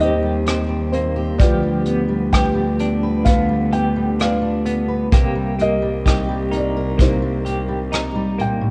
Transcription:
0.00 1.41 D#2 medium
0.00 1.34 D#3 medium
0.00 0.22 G3 medium
0.00 0.93 A#3 medium
0.00 0.46 C4 medium
0.00 0.91 C4 medium
0.00 0.45 D#4 soft
0.00 1.16 G4 medium
0.00 1.41 G4 medium
0.00 1.37 G4 medium
0.00 0.44 A#4 medium
0.00 0.91 C5 medium
0.00 0.96 D#5 loud
0.00 closed hi-hat soft
0.23 0.68 G3 medium
0.46 1.49 C4 medium
0.46 1.34 D#4 soft
0.46 cross-stick medium
0.46 closed hi-hat medium
0.69 1.63 G3 medium
0.92 1.49 A#3 soft
0.92 1.34 C4 medium
0.92 1.40 C5 medium
0.92 closed hi-hat soft
1.16 3.03 G4 medium
1.38 5.14 D2 medium
1.38 3.24 D3 medium
1.38 5.12 F3 medium
1.38 2.34 G4 medium
1.38 2.35 B4 medium
1.38 2.35 D5 medium
1.38 kick medium
1.38 closed hi-hat medium
1.43 3.23 F4 medium
1.63 2.08 G3 medium
1.86 2.79 B3 soft
1.86 3.26 B3 soft
1.86 closed hi-hat soft
2.08 2.55 G3 medium
2.32 4.18 F4 medium
2.32 3.72 G4 medium
2.32 3.26 B4 medium
2.32 3.29 G5 medium
2.32 kick medium
2.32 cross-stick medium
2.32 closed hi-hat medium
2.55 3.48 G3 medium
2.79 3.71 B3 soft
2.79 4.18 D4 medium
2.79 closed hi-hat soft
3.03 4.87 B4 medium
3.25 5.06 D3 medium
3.25 4.64 B3 medium
3.25 4.22 B4 medium
3.25 3.73 F5 medium
3.25 kick medium
3.25 closed hi-hat medium
3.49 3.96 G3 medium
3.73 4.64 B3 medium
3.73 5.13 G4 medium
3.73 4.20 G5 medium
3.73 closed hi-hat soft
3.96 4.41 G3 soft
4.19 5.21 D4 medium
4.19 5.07 F4 medium
4.19 4.86 F5 medium
4.19 cross-stick medium
4.19 closed hi-hat medium
4.24 5.10 B4 medium
4.42 5.35 G3 medium
4.65 5.06 B3 soft
4.65 5.12 B3 soft
4.65 closed hi-hat soft
4.88 5.06 B4 medium
5.12 8.70 C2 medium
5.12 6.98 C3 medium
5.12 5.57 A#3 medium
5.12 6.04 G4 medium
5.12 kick medium
5.12 closed hi-hat medium
5.35 5.81 G3 medium
5.59 6.97 A#3 medium
5.59 6.50 A#3 medium
5.59 6.99 G4 medium
5.59 7.43 A#4 medium
5.59 6.56 D#5 loud
5.59 closed hi-hat medium
5.82 6.28 G3 medium
6.06 7.91 D#4 soft
6.06 7.44 G4 medium
6.06 kick medium
6.06 cross-stick medium
6.06 closed hi-hat medium
6.29 7.21 G3 medium
6.51 7.45 A#3 medium
6.51 7.91 D#4 medium
6.51 closed hi-hat soft
6.57 7.02 D5 medium
6.77 8.70 A#4 medium
6.98 8.70 C3 medium
6.98 8.37 A#3 medium
6.98 8.70 D#4 medium
6.98 8.70 G4 medium
6.98 8.36 C5 medium
6.98 kick medium
6.98 closed hi-hat medium
7.22 7.67 G3 medium
7.45 8.70 A#3 soft
7.45 8.70 G4 medium
7.45 closed hi-hat soft
7.68 8.14 G3 soft
7.92 8.70 D#4 medium
7.92 cross-stick medium
7.92 closed hi-hat medium
8.15 8.70 G3 medium
8.38 8.61 A#2 medium
8.38 8.70 A#3 soft
8.38 8.70 G5 medium
8.38 closed hi-hat soft
8.61 8.70 A2 medium

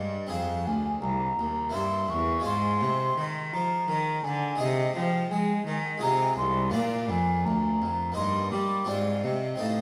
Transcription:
0.00 0.28 G2 medium
0.00 0.31 G2 medium
0.00 0.25 D#4 soft
0.00 0.26 G4 soft
0.00 0.27 C5 soft
0.00 0.29 D#5 medium
0.27 0.64 C4 medium
0.27 1.70 G#4 medium
0.27 1.71 C5 medium
0.27 0.68 F5 medium
0.31 0.64 F2 medium
0.31 0.69 F2 medium
0.67 1.00 D2 medium
0.67 1.02 D2 medium
0.67 1.01 G#5 medium
1.02 1.35 C2 medium
1.02 1.39 C2 medium
1.02 1.76 A#5 medium
1.39 1.77 D#2 medium
1.39 1.72 D#2 medium
1.69 2.41 A#3 medium
1.69 2.42 E4 medium
1.69 2.42 C5 medium
1.74 2.06 G2 medium
1.74 2.10 G2 medium
1.74 2.12 C6 loud
2.08 2.42 E2 medium
2.08 2.46 E2 medium
2.08 2.45 C#6 medium
2.40 4.53 G#3 medium
2.40 4.54 F4 medium
2.40 4.55 C5 medium
2.44 2.77 G#2 medium
2.44 2.84 G#2 medium
2.44 3.25 C6 loud
2.81 3.14 C3 medium
2.81 3.17 C3 medium
3.18 3.55 D#3 medium
3.18 3.50 D#3 medium
3.53 3.89 F3 medium
3.53 3.86 F3 medium
3.53 4.25 A#5 medium
3.88 4.21 D#3 medium
3.88 4.25 D#3 medium
4.24 4.57 D3 medium
4.24 4.60 D3 medium
4.24 4.62 G#5 loud
4.55 5.30 G#3 medium
4.55 5.97 D#4 medium
4.55 5.98 D#5 medium
4.60 4.92 C3 medium
4.60 4.96 C3 medium
4.60 4.96 D#5 medium
4.95 5.28 F3 medium
4.95 5.31 F3 medium
4.95 5.33 G5 loud
5.31 5.64 G#3 medium
5.31 5.66 G#3 medium
5.31 5.78 G#5 medium
5.67 6.02 D#3 medium
5.67 5.99 D#3 medium
5.98 6.69 G#3 medium
5.98 6.70 F4 medium
5.98 6.71 D#5 medium
6.02 6.37 C3 medium
6.02 6.35 C3 medium
6.02 6.36 A#5 loud
6.38 6.75 C2 medium
6.38 6.71 C2 medium
6.38 6.73 C6 loud
6.70 7.12 A#2 medium
6.70 8.11 A#3 medium
6.70 8.12 F4 medium
6.70 8.13 D5 medium
6.70 7.11 F5 medium
6.75 7.07 A#2 medium
7.10 7.42 F2 medium
7.10 7.47 F2 medium
7.10 7.47 G#5 loud
7.45 7.84 D2 medium
7.45 7.79 D2 medium
7.45 8.15 A#5 medium
7.82 8.14 F2 medium
7.82 8.17 F2 medium
8.12 8.84 A#3 medium
8.12 8.85 D#4 medium
8.12 8.86 D#5 medium
8.12 8.51 C6 loud
8.17 8.50 G2 medium
8.17 8.55 G2 medium
8.51 8.85 G3 medium
8.51 8.88 G3 medium
8.51 8.90 D6 loud
8.84 9.54 C4 medium
8.84 9.57 F4 medium
8.84 9.58 C5 medium
8.84 9.25 D5 medium
8.89 9.26 G#2 medium
8.89 9.22 G#2 medium
9.24 9.57 C3 medium
9.24 9.60 C3 medium
9.24 9.62 D#5 medium
9.56 9.81 C4 medium
9.56 9.81 D#4 medium
9.56 9.81 A4 medium
9.60 9.81 A2 medium
9.60 9.81 F5 medium

